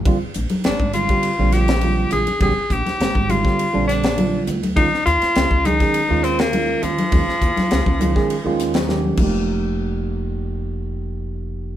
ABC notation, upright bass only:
X:1
M:4/4
L:1/16
Q:1/4=102
K:Fm
V:1 name="Upright bass" clef=bass
B,,, z B,,, z A,,, A,,,2 z2 B,,,4- B,,, B,,, z | B,,, z B,,, z A,,, A,,,2 z2 B,,,4- B,,, =D,,2 | E,, z E,, z D,, D,,2 z2 E,,4- E,, E,, z | E,, z E,, z D,, D,,2 z2 E,,4- E,, F,,,2- |
F,,,16 |]